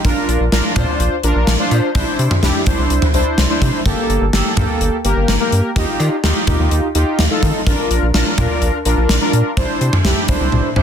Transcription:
0.05 analog synth bass A#1, analog polysynth D4 F4 A#4, kick, closed hi-hat
0.28 analog synth bass A#1, closed hi-hat
0.40 analog synth bass A#1
0.52 analog synth bass A#1, analog polysynth D4 F4 A#4, snare, closed hi-hat
0.76 analog synth bass A#2, analog polysynth D4 F4 C5, kick, closed hi-hat, mid tom, cowbell
1.00 analog synth bass A#1, closed hi-hat
1.23 analog synth bass A#1, analog polysynth D4 F4 A#4, closed hi-hat
1.36 analog synth bass A#1
1.47 analog synth bass A#1, snare, closed hi-hat
1.59 analog polysynth D4 F4 C5
1.71 analog synth bass A#2, closed hi-hat, cowbell
1.95 analog synth bass C2, analog polysynth D4 E4 C5, kick, closed hi-hat
2.19 analog synth bass C3, closed hi-hat
2.31 mid tom
2.43 analog synth bass C2, analog polysynth D4 E4 G4, snare, closed hi-hat
2.66 analog synth bass C2, analog polysynth D4 E4 C5, kick, closed hi-hat
2.78 analog synth bass C2
2.90 analog synth bass C2, closed hi-hat
3.02 mid tom
3.14 analog synth bass C2, analog polysynth D4 E4 C5, closed hi-hat
3.38 analog synth bass C2, snare, closed hi-hat
3.50 analog polysynth D4 E4 C5
3.62 analog synth bass C3, kick, closed hi-hat
3.85 analog synth bass G1, analog polysynth A#3 G4 A4, kick, closed hi-hat
4.09 analog synth bass G1, closed hi-hat
4.21 analog synth bass G1
4.33 analog synth bass G1, analog polysynth A#3 G4 A4, snare, closed hi-hat
4.57 analog synth bass G2, analog polysynth A#3 G4 A4, kick, closed hi-hat, mid tom
4.81 analog synth bass G1, closed hi-hat
5.04 analog synth bass G1, analog polysynth A#3 G4 A#4, closed hi-hat
5.17 analog synth bass G1
5.28 analog synth bass G1, snare, closed hi-hat
5.40 analog polysynth A#3 G4 A#4
5.52 analog synth bass G2, closed hi-hat
5.76 analog synth bass D#2, analog polysynth D#4 F4 G4, kick, closed hi-hat
6.00 analog synth bass D#3, closed hi-hat, cowbell
6.23 analog synth bass D#2, analog polysynth D#4 F4 G4, snare, closed hi-hat
6.47 analog synth bass D#2, analog polysynth D#4 F4 G4, kick, closed hi-hat, mid tom
6.59 analog synth bass D#2
6.71 analog synth bass D#2, closed hi-hat
6.95 analog synth bass D#2, analog polysynth D#4 F4 G4, closed hi-hat
7.19 analog synth bass D#2, snare, closed hi-hat
7.31 analog polysynth D#4 F4 A4
7.43 analog synth bass D#3, kick, closed hi-hat
7.66 analog synth bass A#1, analog polysynth D4 F4 A#4, kick, closed hi-hat
7.90 analog synth bass A#1, closed hi-hat
8.02 analog synth bass A#1
8.14 analog synth bass A#1, analog polysynth D4 F4 A#4, snare, closed hi-hat
8.38 analog synth bass A#2, analog polysynth D4 F4 A#4, kick, closed hi-hat, mid tom
8.62 analog synth bass A#1, closed hi-hat
8.85 analog synth bass A#1, analog polysynth D4 F4 A#4, closed hi-hat
8.97 analog synth bass A#1
9.09 analog synth bass A#1, snare, closed hi-hat
9.21 analog polysynth D4 F4 A#4
9.33 analog synth bass A#2, closed hi-hat
9.57 analog synth bass C2, analog polysynth D4 E4 C5, kick, closed hi-hat
9.81 analog synth bass C3, closed hi-hat
9.93 mid tom
10.05 analog synth bass C2, analog polysynth D4 E4 G4, snare, closed hi-hat
10.28 analog synth bass C2, analog polysynth D4 E4 C5, kick, closed hi-hat
10.40 analog synth bass C2
10.52 analog synth bass C2, high tom
10.76 analog synth bass C2, analog polysynth D4 E4 C5, mid tom

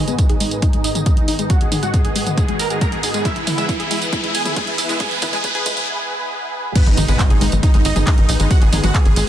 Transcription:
Already playing: analog synth pad G#2 D#3 B3 G#4 D#5, riser
0.08 synth pluck G#3, supersaw synth B3 B4, closed hi-hat, tambourine
0.19 kick, closed hi-hat, tambourine
0.29 supersaw synth D#4, synth pluck G#4, closed hi-hat
0.40 synth pluck G#3, supersaw synth D#4, open hi-hat, tambourine
0.51 closed hi-hat, tambourine
0.62 supersaw synth D#4, synth pluck D#4, kick, closed hi-hat, tambourine
0.73 synth pluck G#3, supersaw synth D#4, closed hi-hat
0.84 supersaw synth D#4 D#5, open hi-hat, tambourine
0.95 supersaw synth D#4, synth pluck G#4, closed hi-hat, mid tom, tambourine
1.06 synth pluck G#3, supersaw synth D#4 D#5, kick, closed hi-hat, tambourine
1.17 supersaw synth D#4, closed hi-hat
1.28 supersaw synth D#4, synth pluck D#4, open hi-hat, tambourine
1.39 synth pluck G#3, supersaw synth D#4, closed hi-hat, tambourine
1.50 synth pluck G#3, supersaw synth F#4 F#5, analog synth pad F#4, kick, closed hi-hat, tambourine
1.61 supersaw synth G#4, closed hi-hat
1.72 synth pluck D#4, supersaw synth G#4, open hi-hat, mid tom, tambourine
1.83 synth pluck G#3, supersaw synth F#4 F#5, closed hi-hat, tambourine
1.94 supersaw synth G#4, kick, closed hi-hat, tambourine
2.05 supersaw synth G#4, synth pluck G#4, closed hi-hat
2.16 synth pluck G#3, supersaw synth G#4, open hi-hat, tambourine
2.27 closed hi-hat, mid tom, tambourine
2.37 synth pluck D#4, supersaw synth G#4, kick, closed hi-hat, tambourine
2.48 synth pluck G#3, supersaw synth G#4, closed hi-hat
2.59 supersaw synth A#4 A#5, open hi-hat, tambourine
2.70 supersaw synth G#4, synth pluck G#4, closed hi-hat, tambourine
2.81 synth pluck G#3, supersaw synth A#4 A#5, kick, closed hi-hat, tambourine
2.92 supersaw synth G#4, closed hi-hat
3.03 synth pluck D#4, supersaw synth G#4, open hi-hat, tambourine
3.14 synth pluck G#3, supersaw synth G#4, closed hi-hat, tambourine
3.25 analog synth pad E2 E3 G#4 B4, synth pluck G#3, supersaw synth E4 E5, kick, closed hi-hat, tambourine
3.36 supersaw synth E4, closed hi-hat
3.47 synth pluck E4, supersaw synth E4, open hi-hat, mid tom, tambourine
3.58 synth pluck G#3, supersaw synth E4 E5, closed hi-hat, tambourine
3.69 supersaw synth E4, kick, closed hi-hat, tambourine
3.80 supersaw synth E4, synth pluck G#4, closed hi-hat
3.91 synth pluck G#3, supersaw synth E4, open hi-hat, tambourine
4.02 closed hi-hat, tambourine
4.13 synth pluck E4, supersaw synth E4, kick, closed hi-hat, tambourine
4.24 synth pluck G#3, supersaw synth E4, closed hi-hat
4.35 supersaw synth G#4 G#5, open hi-hat, tambourine
4.45 supersaw synth E4, synth pluck G#4, closed hi-hat, mid tom, tambourine
4.56 synth pluck G#3, supersaw synth G#4 G#5, kick, closed hi-hat, tambourine
4.67 supersaw synth E4, closed hi-hat
4.78 synth pluck E4, supersaw synth E4, open hi-hat, tambourine
4.89 synth pluck G#3, supersaw synth E4, closed hi-hat, tambourine
5.00 synth pluck G#3, supersaw synth G#4 G#5, kick, closed hi-hat, tambourine
5.11 supersaw synth B4, closed hi-hat
5.22 synth pluck E4, supersaw synth B4, kick, open hi-hat, mid tom, tambourine
5.33 synth pluck G#3, supersaw synth G#4 G#5, closed hi-hat, tambourine
5.44 supersaw synth B4, kick, closed hi-hat, tambourine
5.55 synth pluck G#4, supersaw synth B4, closed hi-hat
5.66 synth pluck G#3, supersaw synth B4, kick, open hi-hat, tambourine
5.77 closed hi-hat, mid tom, tambourine
6.75 analog synth pad D#3 G#3 B3, synth pluck G#3, supersaw synth B3 B4, kick, closed hi-hat, crash, tambourine, impact
6.86 analog synth bass G#1, supersaw synth D#4, closed hi-hat
6.97 analog synth bass G#1, synth pluck D#4, supersaw synth D#4, open hi-hat, mid tom, tambourine
7.08 analog synth bass G#1, synth pluck G#3, supersaw synth B3 B4, closed hi-hat, tambourine
7.19 supersaw synth D#4, kick, clap, closed hi-hat, tambourine
7.30 analog synth bass G#1, supersaw synth D#4, synth pluck G#4, closed hi-hat
7.41 analog synth bass G#1, synth pluck G#3, supersaw synth D#4, open hi-hat, tambourine
7.52 analog synth bass G#1, closed hi-hat, mid tom, tambourine
7.63 synth pluck D#4, supersaw synth D#4, kick, closed hi-hat, tambourine
7.74 analog synth bass G#1, synth pluck G#3, supersaw synth D#4, closed hi-hat
7.85 analog synth bass G#1, supersaw synth D#4 D#5, open hi-hat, tambourine
7.96 analog synth bass G#1, supersaw synth D#4, synth pluck G#4, closed hi-hat, mid tom, tambourine
8.07 synth pluck G#3, supersaw synth D#4 D#5, kick, clap, closed hi-hat, tambourine
8.18 analog synth bass G#1, supersaw synth D#4, closed hi-hat
8.29 analog synth bass A#1, synth pluck D#4, supersaw synth D#4, open hi-hat, tambourine
8.40 analog synth bass G#1, synth pluck G#3, supersaw synth D#4, closed hi-hat, tambourine
8.51 synth pluck G#3, supersaw synth F#4 F#5, kick, closed hi-hat, tambourine
8.62 analog synth bass G#1, supersaw synth G#4, closed hi-hat
8.73 analog synth bass G#1, synth pluck D#4, supersaw synth G#4, open hi-hat, mid tom, tambourine
8.84 analog synth bass G#1, synth pluck G#3, supersaw synth F#4 F#5, closed hi-hat, mid tom, tambourine
8.95 supersaw synth G#4, kick, clap, closed hi-hat, tambourine
9.05 analog synth bass G#1, synth pluck G#4, supersaw synth G#4, closed hi-hat
9.16 analog synth bass G#1, synth pluck G#3, supersaw synth G#4, open hi-hat, tambourine

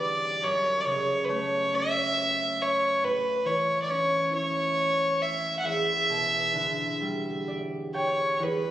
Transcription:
Already playing: harp E2 D3 G3
0.00 violin D5
0.42 harp F#2, violin C#5
0.80 violin D5
0.85 harp C#3, violin C#5
1.25 violin B4
1.29 harp A3, violin C#5
1.72 harp C#4, violin E5
2.62 violin C#5
3.03 harp A2, violin B4
3.44 harp E3, violin C#5
3.82 violin D5
3.88 harp C#4, violin C#5
4.31 harp E4
4.35 violin C#5
5.22 violin E5
5.59 violin F#5
5.63 harp E2, violin E5
6.09 harp B2
6.53 harp D3
7.01 harp G3
7.48 harp D5
7.94 violin C#5, harp G5
8.37 harp E2, violin C#5
8.43 violin B4

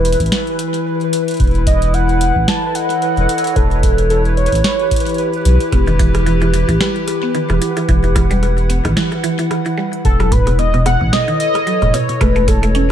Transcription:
Already playing: sub bass E1, ambient pad E3 E4 G4 B4, soft synth lead B4, synth texture B4
0.05 closed hi-hat
0.12 closed hi-hat
0.20 sub bass A1, kick, closed hi-hat
0.26 closed hi-hat
0.32 snare, closed hi-hat
0.47 closed hi-hat
0.59 closed hi-hat
0.74 closed hi-hat
1.01 closed hi-hat
1.13 closed hi-hat
1.28 closed hi-hat
1.31 closed hi-hat
1.34 closed hi-hat
1.37 sub bass E1, kick, closed hi-hat
1.40 closed hi-hat
1.44 closed hi-hat
1.47 closed hi-hat
1.51 closed hi-hat
1.55 closed hi-hat
1.67 soft synth lead D#5, kick, closed hi-hat
1.82 closed hi-hat
1.94 soft synth lead F#5, closed hi-hat
2.09 closed hi-hat
2.21 ambient pad A4, closed hi-hat
2.36 sub bass A1, ambient pad C#5 D#5, kick
2.48 soft synth lead A5, snare, closed hi-hat
2.75 soft synth lead F#5, closed hi-hat
2.90 closed hi-hat
3.02 closed hi-hat
3.17 sub bass E1, closed hi-hat
3.29 closed hi-hat
3.38 closed hi-hat
3.44 closed hi-hat
3.47 closed hi-hat
3.56 sub bass E1, soft synth lead A4, kick, closed hi-hat
3.71 closed hi-hat
3.83 kick, closed hi-hat
3.94 ambient pad B4
3.98 ambient pad G4, closed hi-hat
4.10 soft synth lead A4, closed hi-hat
4.25 closed hi-hat
4.37 soft synth lead C#5, closed hi-hat
4.46 closed hi-hat
4.52 sub bass A1, kick, closed hi-hat
4.55 closed hi-hat
4.64 soft synth lead C#5, snare, closed hi-hat
4.79 closed hi-hat
4.91 kick, closed hi-hat
4.96 closed hi-hat
5.00 closed hi-hat
5.06 closed hi-hat
5.09 closed hi-hat
5.14 closed hi-hat
5.18 closed hi-hat
5.33 closed hi-hat
5.45 sub bass B1, closed hi-hat
5.60 closed hi-hat
5.72 sub bass E1, synth arpeggio sound B3, kick, cross-stick, closed hi-hat
5.87 synth arpeggio sound D#3, closed hi-hat
5.99 synth arpeggio sound E3, kick, closed hi-hat
6.15 synth arpeggio sound E3, cross-stick, closed hi-hat
6.26 synth arpeggio sound E3, closed hi-hat
6.41 synth arpeggio sound E3, cross-stick, closed hi-hat
6.53 synth arpeggio sound E3, closed hi-hat
6.68 sub bass A1, synth arpeggio sound E3, kick, closed hi-hat
6.80 synth arpeggio sound G3, cross-stick, snare, closed hi-hat
6.91 ambient pad F#5
6.96 closed hi-hat
7.08 cross-stick, closed hi-hat
7.23 synth arpeggio sound B3
7.35 synth arpeggio sound D#3, closed hi-hat
7.50 sub bass E1, synth arpeggio sound E3, cross-stick, closed hi-hat
7.62 synth arpeggio sound E3, closed hi-hat
7.77 synth arpeggio sound E3, cross-stick, closed hi-hat
7.89 sub bass E1, synth arpeggio sound E3, kick, closed hi-hat
8.04 synth arpeggio sound E3, closed hi-hat
8.16 synth arpeggio sound E3, kick, cross-stick, closed hi-hat
8.31 synth arpeggio sound G3, closed hi-hat
8.43 cross-stick, closed hi-hat
8.58 closed hi-hat
8.69 synth arpeggio sound B3, closed hi-hat
8.85 sub bass A1, synth arpeggio sound D#3, kick, cross-stick, closed hi-hat
8.97 synth arpeggio sound E3, snare, closed hi-hat
9.12 synth arpeggio sound E3, cross-stick, closed hi-hat
9.24 synth arpeggio sound E3, closed hi-hat
9.39 synth arpeggio sound E3, closed hi-hat
9.51 synth arpeggio sound E3, cross-stick, closed hi-hat
9.66 synth arpeggio sound E3, closed hi-hat
9.78 synth arpeggio sound G3
9.93 closed hi-hat
10.05 sub bass E1, soft synth lead A4, kick, closed hi-hat
10.20 synth arpeggio sound F#3, ambient pad C#5, cross-stick, closed hi-hat
10.32 synth arpeggio sound A2, soft synth lead B4, kick, closed hi-hat
10.47 synth arpeggio sound B2, ambient pad A4, cross-stick, closed hi-hat
10.56 synth arpeggio sound B2, ambient pad D#5, soft synth lead D#5, closed hi-hat
10.74 synth arpeggio sound B2, closed hi-hat
10.86 synth arpeggio sound B2, soft synth lead F#5, cross-stick, closed hi-hat
11.01 sub bass A1, synth arpeggio sound B2, kick
11.13 synth arpeggio sound B2, soft synth lead D#5, cross-stick, snare, closed hi-hat
11.28 synth arpeggio sound D#3, closed hi-hat
11.40 soft synth lead D#5, closed hi-hat
11.55 cross-stick, closed hi-hat
11.67 synth arpeggio sound F#3, closed hi-hat
11.82 sub bass E1, synth arpeggio sound A2, cross-stick, closed hi-hat
11.94 synth arpeggio sound B2, soft synth lead C#5, closed hi-hat
12.09 synth arpeggio sound B2, closed hi-hat
12.21 sub bass E1, synth arpeggio sound A3, soft synth lead B4, kick, cross-stick, closed hi-hat
12.32 synth arpeggio sound A3, ambient pad G4
12.36 closed hi-hat
12.45 synth arpeggio sound A3, soft synth lead A4, ambient pad B4, kick, cross-stick, closed hi-hat
12.63 synth arpeggio sound A3, closed hi-hat
12.75 synth arpeggio sound C#4, closed hi-hat

